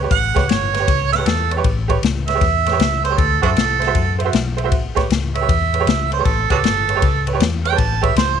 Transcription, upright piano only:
0.02 0.10 G4 medium
0.02 0.10 B4 medium
0.02 0.10 C#5 medium
0.34 0.42 G4 medium
0.34 0.42 B4 medium
0.34 0.42 C#5 medium
0.72 0.76 B4 soft
0.72 0.77 C#5 soft
0.79 0.87 G4 medium
0.79 0.87 B4 medium
0.79 0.87 C#5 medium
1.11 1.15 B4 soft
1.11 1.16 C#5 soft
1.18 1.25 G4 medium
1.18 1.25 B4 medium
1.18 1.26 C#5 medium
1.50 1.54 B4 soft
1.50 1.54 C#5 soft
1.57 1.64 G4 medium
1.57 1.64 B4 medium
1.57 1.64 C#5 medium
1.88 1.95 G4 medium
1.88 1.96 B4 medium
1.88 1.96 C#5 loud
2.27 2.31 B4 soft
2.27 2.31 C#5 soft
2.34 2.41 G4 medium
2.34 2.41 B4 medium
2.34 2.42 C#5 medium
2.65 2.69 B4 soft
2.65 2.70 C#5 soft
2.71 2.79 G4 medium
2.71 2.79 B4 medium
2.71 2.80 C#5 medium
3.03 3.07 B4 soft
3.03 3.08 C#5 soft
3.10 3.17 G4 medium
3.10 3.18 B4 medium
3.10 3.18 C#5 medium
3.42 3.49 F#4 medium
3.42 3.49 C5 medium
3.42 3.50 E5 medium
3.80 3.84 C5 soft
3.80 3.84 E5 soft
3.87 3.94 F#4 medium
3.87 3.94 C5 medium
3.87 3.95 E5 medium
4.18 4.22 C5 medium
4.18 4.23 E5 medium
4.24 4.32 F#4 medium
4.24 4.33 C5 medium
4.24 4.33 E5 medium
4.57 4.61 C5 soft
4.57 4.61 E5 medium
4.64 4.71 F#4 medium
4.64 4.71 C5 medium
4.64 4.72 E5 medium
4.95 5.02 G4 medium
4.95 5.03 B4 medium
4.95 5.03 C#5 loud
5.34 5.38 B4 soft
5.34 5.38 C#5 soft
5.41 5.48 G4 medium
5.41 5.48 B4 medium
5.41 5.49 C#5 medium
5.73 5.76 B4 soft
5.73 5.77 C#5 soft
5.80 5.86 G4 medium
5.80 5.87 B4 medium
5.80 5.87 C#5 medium
6.11 6.15 B4 soft
6.11 6.15 C#5 soft
6.18 6.25 G4 medium
6.18 6.25 B4 medium
6.18 6.26 C#5 medium
6.50 6.56 G4 medium
6.50 6.57 B4 medium
6.50 6.57 C#5 medium
6.88 6.91 B4 soft
6.88 6.92 C#5 soft
6.95 7.02 G4 medium
6.95 7.02 B4 medium
6.95 7.02 C#5 medium
7.26 7.30 B4 medium
7.26 7.30 C#5 medium
7.33 7.40 G4 medium
7.33 7.40 B4 medium
7.33 7.41 C#5 medium
7.64 7.68 B4 soft
7.64 7.68 C#5 soft
7.71 7.78 G4 medium
7.71 7.78 B4 medium
7.71 7.79 C#5 medium
8.01 8.09 G4 medium
8.01 8.09 B4 medium
8.01 8.09 C#5 medium

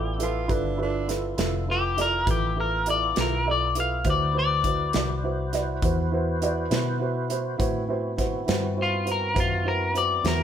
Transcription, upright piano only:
0.00 0.12 E4 soft
0.00 0.12 F4 soft
0.00 0.13 A4 soft
0.00 0.13 D5 medium
0.18 0.42 E4 medium
0.18 0.42 F4 soft
0.18 0.42 A4 medium
0.18 0.43 B4 medium
0.48 0.71 E4 medium
0.48 0.71 F4 medium
0.48 0.72 A4 medium
0.48 0.72 B4 medium
0.77 1.01 E4 medium
0.77 1.01 F4 medium
0.77 1.02 A4 soft
0.77 1.02 B4 medium
1.07 1.31 E4 medium
1.07 1.31 F4 soft
1.07 1.31 A4 medium
1.07 1.31 B4 medium
1.37 1.60 E4 medium
1.37 1.61 F4 medium
1.37 1.61 A4 medium
1.37 1.61 B4 medium
1.68 1.91 E4 soft
1.68 1.91 F4 soft
1.68 1.91 A4 soft
1.68 1.91 B4 medium
1.96 2.20 E4 soft
1.96 2.20 F4 soft
1.96 2.20 A4 soft
1.96 2.21 D5 medium
2.26 2.49 E4 soft
2.26 2.50 F4 soft
2.26 2.50 A4 soft
2.26 2.50 B4 medium
2.56 2.79 E4 soft
2.56 2.79 F4 soft
2.56 2.80 A4 soft
2.56 2.80 B4 soft
2.86 3.09 E4 soft
2.86 3.09 F4 soft
2.86 3.10 A4 soft
2.86 3.10 D5 soft
3.15 3.38 E4 soft
3.15 3.39 F4 soft
3.15 3.39 A4 soft
3.15 3.39 B4 medium
3.45 3.68 E4 soft
3.45 3.69 F4 soft
3.45 3.69 A4 soft
3.45 3.69 D5 medium
3.75 3.98 E4 soft
3.75 3.98 F4 soft
3.75 3.99 A4 soft
3.75 3.99 B4 soft
4.05 4.27 E4 medium
4.05 4.28 F#4 medium
4.05 4.28 B4 soft
4.05 4.28 C5 medium
4.33 4.57 E4 soft
4.33 4.57 F#4 soft
4.33 4.57 B4 soft
4.33 4.57 C5 medium
4.64 4.87 E4 soft
4.64 4.87 F#4 soft
4.64 4.87 B4 soft
4.64 4.88 C5 medium
4.94 5.16 E4 soft
4.94 5.17 F#4 soft
4.94 5.17 B4 soft
4.94 5.17 D5 soft
5.24 5.46 E4 medium
5.24 5.46 F#4 medium
5.24 5.46 B4 soft
5.24 5.46 C5 medium
5.52 5.75 E4 medium
5.52 5.76 F#4 soft
5.52 5.76 B4 soft
5.52 5.76 D5 medium
5.82 6.05 E4 medium
5.82 6.05 F#4 soft
5.82 6.05 B4 medium
5.82 6.06 C5 medium
6.12 6.34 E4 medium
6.12 6.35 F#4 medium
6.12 6.35 B4 medium
6.12 6.35 C5 medium
6.41 6.64 E4 medium
6.41 6.64 F#4 medium
6.41 6.64 B4 medium
6.41 6.65 D5 medium
6.70 6.93 E4 medium
6.70 6.93 F#4 medium
6.70 6.93 B4 medium
6.70 6.94 C5 medium
7.00 7.23 E4 medium
7.00 7.23 F#4 medium
7.00 7.23 B4 soft
7.00 7.24 C5 medium
7.29 7.52 E4 medium
7.29 7.52 F#4 soft
7.29 7.53 B4 medium
7.29 7.53 C5 medium
7.58 7.81 E4 medium
7.58 7.81 F#4 medium
7.58 7.82 B4 medium
7.58 7.82 C5 medium
7.88 8.11 E4 medium
7.88 8.12 F#4 medium
7.88 8.12 B4 medium
7.88 8.12 C5 medium
8.17 8.40 E4 medium
8.17 8.41 F#4 medium
8.17 8.41 B4 soft
8.17 8.41 C5 medium
8.46 8.70 E4 medium
8.46 8.70 F#4 medium
8.46 8.70 B4 medium
8.46 8.70 C5 medium
8.76 8.99 E4 medium
8.76 9.00 F#4 soft
8.76 9.00 B4 soft
8.76 9.00 C5 medium
9.05 9.28 E4 soft
9.05 9.29 F#4 soft
9.05 9.29 B4 soft
9.05 9.29 C5 medium
9.34 9.58 E4 medium
9.34 9.58 F#4 soft
9.34 9.58 B4 soft
9.34 9.58 C5 medium
9.65 9.88 E4 medium
9.65 9.88 F#4 soft
9.65 9.88 B4 soft
9.65 9.88 C5 medium
9.94 10.17 E4 medium
9.94 10.17 F#4 soft
9.94 10.18 B4 soft
9.94 10.18 C5 medium
10.24 10.43 E4 medium
10.24 10.43 F#4 soft
10.24 10.43 B4 soft
10.24 10.43 C5 medium

